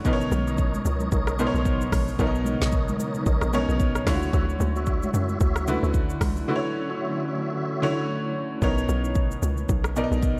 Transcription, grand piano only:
0.05 0.92 B2 loud
0.05 0.92 B3 medium
0.05 0.92 D#4 medium
0.05 0.92 A#4 medium
0.05 0.13 B4 medium
0.13 0.95 C#5 loud
1.39 2.05 B2 medium
1.39 2.05 B3 medium
1.39 2.05 D#4 medium
1.39 2.05 A#4 medium
1.39 1.47 C5 medium
1.47 2.09 C#5 loud
2.19 3.06 B2 medium
2.19 3.06 B3 medium
2.19 3.06 D#4 medium
2.19 3.06 A#4 medium
2.19 2.27 C#5 medium
2.27 3.10 D#5 loud
3.53 4.07 B2 medium
3.53 4.07 B3 medium
3.53 3.61 C#4 medium
3.53 4.07 A#4 medium
3.53 4.07 C#5 loud
3.60 4.10 D#4 medium
4.07 4.93 D3 loud
4.07 4.93 A3 medium
4.07 4.94 E4 medium
4.07 4.15 F4 medium
4.07 4.94 C#5 loud
4.14 4.97 F#4 medium
5.68 6.33 D3 loud
5.68 6.34 A3 medium
5.68 6.34 E4 medium
5.68 6.34 F#4 medium
5.68 6.34 B4 loud
6.48 7.34 D3 medium
6.48 7.35 A3 medium
6.48 7.35 E4 medium
6.48 7.35 F#4 medium
6.48 6.56 B4 medium
6.56 7.38 C#5 loud
7.82 8.48 D3 loud
7.82 8.48 A3 medium
7.82 8.48 E4 medium
7.82 8.48 F#4 medium
7.82 8.48 C#5 loud
8.62 9.49 B2 medium
8.62 9.49 B3 medium
8.62 9.49 D#4 medium
8.62 9.49 A#4 medium
8.62 9.49 C#5 loud
9.96 10.40 B2 medium
9.96 10.40 B3 medium
9.96 10.40 D#4 medium
9.96 10.40 A#4 medium
9.96 10.04 D5 medium
10.04 10.40 D#5 loud

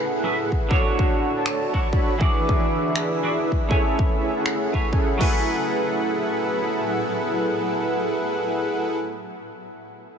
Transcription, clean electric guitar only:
0.00 0.22 A3 medium
0.00 0.21 C#4 medium
0.00 0.21 E4 medium
0.00 0.23 B4 loud
0.00 0.22 G#5 medium
0.23 0.37 F#3 medium
0.23 0.37 C#4 medium
0.23 0.37 E4 medium
0.23 0.37 G#4 medium
0.23 0.37 A4 medium
0.23 0.38 B4 medium
0.69 1.71 D3 medium
0.69 1.71 D4 medium
0.69 0.72 E4 medium
0.69 1.72 F#4 medium
0.73 1.73 C#5 loud
1.73 1.87 D3 medium
1.73 1.87 D4 medium
1.73 1.87 E4 medium
1.73 1.87 F#4 medium
1.73 1.88 C#5 medium
2.18 3.21 E3 loud
2.18 3.21 E4 medium
2.18 3.22 F#4 medium
2.18 3.22 G#4 medium
2.18 3.23 D5 loud
3.23 3.37 E3 medium
3.23 3.37 E4 medium
3.23 3.37 F#4 medium
3.23 3.37 G#4 medium
3.23 3.38 D5 medium
3.69 4.71 A3 loud
3.69 4.71 E4 medium
3.69 4.72 B4 medium
3.69 4.72 G#5 medium
3.73 4.73 C#5 loud
4.73 4.87 A3 medium
4.73 4.87 E4 medium
4.73 4.87 G#4 medium
4.73 4.87 B4 medium
4.73 4.88 C#5 medium
5.18 9.48 F#3 medium
5.18 9.49 C#4 medium
5.18 9.50 E4 medium
5.18 9.51 G#5 medium
5.23 9.53 A3 medium
5.23 9.54 B4 medium

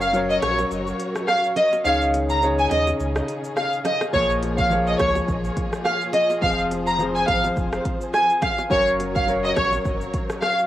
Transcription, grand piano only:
0.00 0.13 F#3 medium
0.00 0.14 C#4 medium
0.00 0.14 A#4 medium
0.00 0.15 C#5 medium
0.13 0.90 F#3 medium
0.13 0.91 C#4 medium
0.13 0.91 A#4 medium
0.13 0.92 C#5 medium
1.84 2.24 D#3 medium
1.84 2.24 C#4 medium
1.84 2.25 G#4 medium
1.84 2.25 C#5 medium
2.41 3.19 D#3 medium
2.41 3.19 C#4 medium
2.41 3.20 G#4 medium
2.41 3.20 C#5 medium
4.13 4.52 F3 medium
4.13 4.53 A#3 medium
4.13 4.53 G#4 medium
4.13 4.54 C#5 medium
4.70 5.48 F3 medium
4.70 5.48 A#3 medium
4.70 5.48 G#4 medium
4.70 5.49 C#5 medium
6.41 6.81 F3 medium
6.41 6.81 C4 medium
6.41 6.82 G#4 medium
6.41 6.82 C5 medium
6.98 7.76 F3 medium
6.98 7.76 C4 medium
6.98 7.77 G#4 medium
6.98 7.77 C5 medium
8.70 9.10 F#3 medium
8.70 9.10 C#4 medium
8.70 9.10 A#4 medium
8.70 9.11 C#5 medium
9.27 10.05 F#3 medium
9.27 10.05 C#4 medium
9.27 10.05 A#4 medium
9.27 10.06 C#5 medium

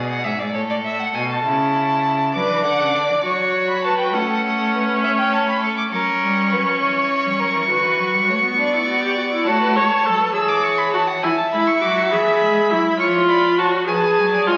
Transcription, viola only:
2.35 3.21 D4 medium
3.25 4.16 F#4 medium
4.14 5.91 C#4 medium
5.92 7.66 C#4 medium
7.69 8.57 F#4 medium
8.58 8.75 D4 medium
8.73 8.87 E4 medium
8.88 9.02 F#4 medium
9.03 9.17 G4 medium
9.17 9.23 F#4 medium
9.32 9.49 E4 medium
9.47 9.78 F#4 loud
9.76 10.07 C#5 medium
10.06 10.35 A4 loud
10.35 10.93 G#4 loud
10.94 11.02 F#4 medium
11.23 11.31 E4 loud
11.53 11.82 E4 loud
11.83 12.13 F#4 loud
12.12 12.72 G#4 loud
12.71 13.00 E4 loud
13.00 13.60 F4 loud
13.58 13.87 F#4 loud
13.88 14.49 G#4 loud
14.47 14.57 F4 loud

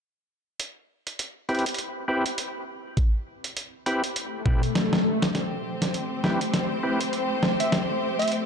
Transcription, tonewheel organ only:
1.49 1.65 C4 medium
1.49 1.65 E4 medium
1.49 1.65 G4 medium
1.49 1.65 B4 medium
2.08 2.24 C4 medium
2.08 2.24 E4 medium
2.08 2.24 G4 medium
2.08 2.24 B4 medium
3.86 4.03 C4 medium
3.86 4.03 E4 medium
3.86 4.03 G4 medium
3.86 4.03 B4 medium
4.46 4.62 C4 medium
4.46 4.62 E4 medium
4.46 4.62 G4 medium
4.46 4.62 B4 loud
6.24 6.40 C4 medium
6.24 6.40 E4 medium
6.24 6.40 G4 medium
6.24 6.40 B4 medium
6.83 7.00 C4 medium
6.83 7.00 E4 medium
6.83 7.00 G4 medium
6.83 7.00 B4 loud

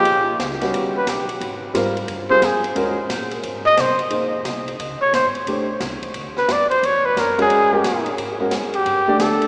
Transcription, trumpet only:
0.00 0.37 G4 loud
0.97 1.11 B4 medium
1.10 1.30 G4 medium
2.30 2.46 C5 loud
2.45 2.65 G#4 medium
3.66 3.82 D#5 loud
3.81 4.01 C5 medium
5.02 5.12 C#5 loud
5.15 5.27 C5 medium
6.38 6.54 B4 medium
6.52 6.70 D5 medium
6.70 6.87 C5 medium
6.86 7.07 C#5 medium
7.06 7.21 B4 medium
7.19 7.40 A#4 medium
7.42 8.16 G#4 medium
8.75 9.23 G4 medium
9.21 9.47 A4 medium

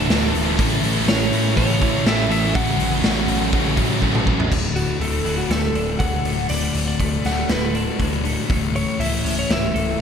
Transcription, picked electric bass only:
0.10 0.31 D1 loud
0.34 0.55 D1 loud
0.59 0.80 A1 loud
0.83 1.04 A1 medium
1.08 1.29 A1 medium
1.32 1.53 A1 loud
1.57 1.77 A1 loud
1.81 2.02 A1 medium
2.06 2.26 A1 loud
2.29 2.51 A1 loud
2.55 2.76 A1 loud
2.78 2.99 A1 medium
3.03 3.24 A1 medium
3.28 3.49 A1 loud
3.53 3.74 A1 medium
3.77 3.98 A1 medium
4.02 4.23 A1 medium
4.27 4.48 A1 medium
4.52 4.85 D1 medium
5.00 5.17 D1 medium
5.25 5.42 D1 medium
5.50 5.67 D1 medium
5.74 5.91 D1 medium
6.00 6.17 D1 medium
6.25 6.42 D1 medium
6.50 6.67 D1 medium
6.75 6.92 D1 medium
6.99 7.16 D1 medium
7.25 7.42 D1 medium
7.50 7.83 D1 medium
7.99 8.33 D1 medium
8.50 8.83 C#1 medium
8.99 9.16 C#1 medium
9.25 9.42 C#1 medium
9.50 9.67 C#1 loud
9.75 9.92 C#1 medium

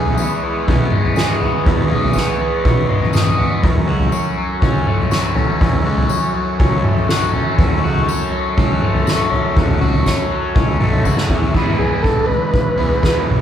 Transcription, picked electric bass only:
0.00 0.17 B1 medium
0.68 0.91 B1 medium
1.67 1.90 E2 loud
1.90 2.13 B1 loud
2.65 2.87 B1 loud
3.64 3.88 E2 loud
3.88 4.10 C#2 medium
4.63 4.85 C#2 medium
5.61 5.85 E2 loud
5.85 6.07 C#2 medium
6.60 6.82 C#2 medium
7.59 7.83 E2 loud
7.83 8.05 C#2 medium
8.58 8.80 C#2 loud
9.57 9.81 E2 loud
9.81 10.03 C#2 medium
10.56 10.78 C#2 loud
10.79 11.02 B1 medium
11.05 11.27 C#2 medium
11.30 11.52 E2 medium
11.54 11.77 E2 loud
12.77 12.89 E2 medium
13.03 13.26 E2 medium
13.27 13.41 B1 medium

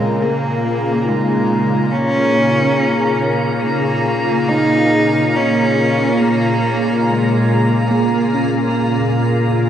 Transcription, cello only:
0.00 0.25 G#3 medium
0.23 1.10 A#3 medium
1.09 1.93 G#3 medium
1.92 3.20 C#4 medium
3.60 4.50 A#3 medium
4.49 5.38 D#4 medium
5.36 6.22 C#4 medium
6.20 7.09 A#3 medium
7.08 7.93 G#3 medium

